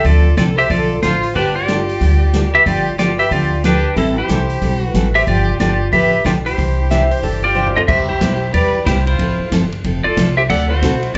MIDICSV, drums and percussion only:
0, 0, Header, 1, 2, 480
1, 0, Start_track
1, 0, Key_signature, 0, "major"
1, 0, Tempo, 326442
1, 68, Time_signature, 4, 2, 24, 8
1, 16438, End_track
2, 0, Start_track
2, 0, Title_t, "Drums"
2, 65, Note_on_c, 9, 46, 44
2, 67, Note_on_c, 9, 36, 31
2, 212, Note_off_c, 9, 46, 0
2, 214, Note_off_c, 9, 36, 0
2, 548, Note_on_c, 9, 38, 71
2, 548, Note_on_c, 9, 42, 52
2, 695, Note_off_c, 9, 38, 0
2, 695, Note_off_c, 9, 42, 0
2, 853, Note_on_c, 9, 46, 39
2, 1000, Note_off_c, 9, 46, 0
2, 1028, Note_on_c, 9, 36, 33
2, 1028, Note_on_c, 9, 46, 44
2, 1175, Note_off_c, 9, 36, 0
2, 1175, Note_off_c, 9, 46, 0
2, 1508, Note_on_c, 9, 38, 67
2, 1508, Note_on_c, 9, 42, 53
2, 1655, Note_off_c, 9, 38, 0
2, 1655, Note_off_c, 9, 42, 0
2, 1810, Note_on_c, 9, 46, 40
2, 1957, Note_off_c, 9, 46, 0
2, 1992, Note_on_c, 9, 36, 31
2, 1993, Note_on_c, 9, 46, 43
2, 2139, Note_off_c, 9, 36, 0
2, 2140, Note_off_c, 9, 46, 0
2, 2473, Note_on_c, 9, 38, 66
2, 2473, Note_on_c, 9, 42, 50
2, 2620, Note_off_c, 9, 38, 0
2, 2620, Note_off_c, 9, 42, 0
2, 2777, Note_on_c, 9, 46, 35
2, 2924, Note_off_c, 9, 46, 0
2, 2955, Note_on_c, 9, 36, 34
2, 2956, Note_on_c, 9, 46, 48
2, 3102, Note_off_c, 9, 36, 0
2, 3103, Note_off_c, 9, 46, 0
2, 3435, Note_on_c, 9, 38, 72
2, 3435, Note_on_c, 9, 42, 55
2, 3582, Note_off_c, 9, 38, 0
2, 3582, Note_off_c, 9, 42, 0
2, 3914, Note_on_c, 9, 36, 36
2, 3916, Note_on_c, 9, 46, 49
2, 4061, Note_off_c, 9, 36, 0
2, 4063, Note_off_c, 9, 46, 0
2, 4395, Note_on_c, 9, 38, 66
2, 4395, Note_on_c, 9, 42, 53
2, 4542, Note_off_c, 9, 38, 0
2, 4542, Note_off_c, 9, 42, 0
2, 4687, Note_on_c, 9, 46, 39
2, 4834, Note_off_c, 9, 46, 0
2, 4865, Note_on_c, 9, 46, 45
2, 4869, Note_on_c, 9, 36, 33
2, 5012, Note_off_c, 9, 46, 0
2, 5016, Note_off_c, 9, 36, 0
2, 5350, Note_on_c, 9, 38, 66
2, 5350, Note_on_c, 9, 42, 55
2, 5497, Note_off_c, 9, 38, 0
2, 5497, Note_off_c, 9, 42, 0
2, 5831, Note_on_c, 9, 36, 32
2, 5832, Note_on_c, 9, 46, 45
2, 5978, Note_off_c, 9, 36, 0
2, 5979, Note_off_c, 9, 46, 0
2, 6312, Note_on_c, 9, 38, 66
2, 6312, Note_on_c, 9, 42, 52
2, 6459, Note_off_c, 9, 38, 0
2, 6459, Note_off_c, 9, 42, 0
2, 6611, Note_on_c, 9, 46, 39
2, 6758, Note_off_c, 9, 46, 0
2, 6790, Note_on_c, 9, 36, 33
2, 6790, Note_on_c, 9, 46, 46
2, 6937, Note_off_c, 9, 36, 0
2, 6937, Note_off_c, 9, 46, 0
2, 7269, Note_on_c, 9, 38, 63
2, 7269, Note_on_c, 9, 42, 53
2, 7416, Note_off_c, 9, 38, 0
2, 7416, Note_off_c, 9, 42, 0
2, 7569, Note_on_c, 9, 46, 41
2, 7716, Note_off_c, 9, 46, 0
2, 7748, Note_on_c, 9, 46, 43
2, 7750, Note_on_c, 9, 36, 33
2, 7895, Note_off_c, 9, 46, 0
2, 7897, Note_off_c, 9, 36, 0
2, 8233, Note_on_c, 9, 38, 68
2, 8233, Note_on_c, 9, 42, 57
2, 8380, Note_off_c, 9, 38, 0
2, 8380, Note_off_c, 9, 42, 0
2, 8713, Note_on_c, 9, 36, 36
2, 8714, Note_on_c, 9, 46, 47
2, 8860, Note_off_c, 9, 36, 0
2, 8861, Note_off_c, 9, 46, 0
2, 9195, Note_on_c, 9, 38, 69
2, 9195, Note_on_c, 9, 42, 53
2, 9342, Note_off_c, 9, 38, 0
2, 9342, Note_off_c, 9, 42, 0
2, 9498, Note_on_c, 9, 46, 41
2, 9645, Note_off_c, 9, 46, 0
2, 9677, Note_on_c, 9, 36, 33
2, 9683, Note_on_c, 9, 46, 48
2, 9824, Note_off_c, 9, 36, 0
2, 9830, Note_off_c, 9, 46, 0
2, 10161, Note_on_c, 9, 38, 68
2, 10161, Note_on_c, 9, 42, 56
2, 10308, Note_off_c, 9, 38, 0
2, 10308, Note_off_c, 9, 42, 0
2, 10457, Note_on_c, 9, 46, 38
2, 10604, Note_off_c, 9, 46, 0
2, 10633, Note_on_c, 9, 46, 46
2, 10635, Note_on_c, 9, 36, 35
2, 10780, Note_off_c, 9, 46, 0
2, 10782, Note_off_c, 9, 36, 0
2, 11271, Note_on_c, 9, 43, 55
2, 11418, Note_off_c, 9, 43, 0
2, 11432, Note_on_c, 9, 43, 83
2, 11579, Note_off_c, 9, 43, 0
2, 11593, Note_on_c, 9, 36, 76
2, 11595, Note_on_c, 9, 49, 76
2, 11740, Note_off_c, 9, 36, 0
2, 11742, Note_off_c, 9, 49, 0
2, 12072, Note_on_c, 9, 36, 25
2, 12072, Note_on_c, 9, 38, 69
2, 12072, Note_on_c, 9, 44, 55
2, 12072, Note_on_c, 9, 51, 73
2, 12219, Note_off_c, 9, 36, 0
2, 12219, Note_off_c, 9, 38, 0
2, 12219, Note_off_c, 9, 44, 0
2, 12219, Note_off_c, 9, 51, 0
2, 12552, Note_on_c, 9, 36, 22
2, 12554, Note_on_c, 9, 51, 61
2, 12699, Note_off_c, 9, 36, 0
2, 12701, Note_off_c, 9, 51, 0
2, 13031, Note_on_c, 9, 36, 26
2, 13035, Note_on_c, 9, 38, 69
2, 13035, Note_on_c, 9, 44, 56
2, 13035, Note_on_c, 9, 51, 71
2, 13178, Note_off_c, 9, 36, 0
2, 13182, Note_off_c, 9, 38, 0
2, 13182, Note_off_c, 9, 44, 0
2, 13182, Note_off_c, 9, 51, 0
2, 13338, Note_on_c, 9, 51, 51
2, 13485, Note_off_c, 9, 51, 0
2, 13513, Note_on_c, 9, 36, 21
2, 13516, Note_on_c, 9, 51, 61
2, 13660, Note_off_c, 9, 36, 0
2, 13663, Note_off_c, 9, 51, 0
2, 13993, Note_on_c, 9, 36, 21
2, 13996, Note_on_c, 9, 38, 71
2, 13996, Note_on_c, 9, 44, 50
2, 13996, Note_on_c, 9, 51, 69
2, 14140, Note_off_c, 9, 36, 0
2, 14143, Note_off_c, 9, 38, 0
2, 14143, Note_off_c, 9, 44, 0
2, 14143, Note_off_c, 9, 51, 0
2, 14297, Note_on_c, 9, 51, 48
2, 14444, Note_off_c, 9, 51, 0
2, 14473, Note_on_c, 9, 36, 21
2, 14474, Note_on_c, 9, 51, 60
2, 14620, Note_off_c, 9, 36, 0
2, 14621, Note_off_c, 9, 51, 0
2, 14953, Note_on_c, 9, 36, 25
2, 14957, Note_on_c, 9, 38, 75
2, 14957, Note_on_c, 9, 44, 66
2, 14957, Note_on_c, 9, 51, 76
2, 15100, Note_off_c, 9, 36, 0
2, 15104, Note_off_c, 9, 38, 0
2, 15104, Note_off_c, 9, 44, 0
2, 15104, Note_off_c, 9, 51, 0
2, 15434, Note_on_c, 9, 36, 24
2, 15437, Note_on_c, 9, 51, 63
2, 15581, Note_off_c, 9, 36, 0
2, 15584, Note_off_c, 9, 51, 0
2, 15912, Note_on_c, 9, 36, 24
2, 15916, Note_on_c, 9, 38, 71
2, 15916, Note_on_c, 9, 44, 62
2, 15916, Note_on_c, 9, 51, 70
2, 16059, Note_off_c, 9, 36, 0
2, 16063, Note_off_c, 9, 38, 0
2, 16063, Note_off_c, 9, 44, 0
2, 16063, Note_off_c, 9, 51, 0
2, 16214, Note_on_c, 9, 51, 47
2, 16361, Note_off_c, 9, 51, 0
2, 16391, Note_on_c, 9, 36, 26
2, 16393, Note_on_c, 9, 51, 64
2, 16438, Note_off_c, 9, 36, 0
2, 16438, Note_off_c, 9, 51, 0
2, 16438, End_track
0, 0, End_of_file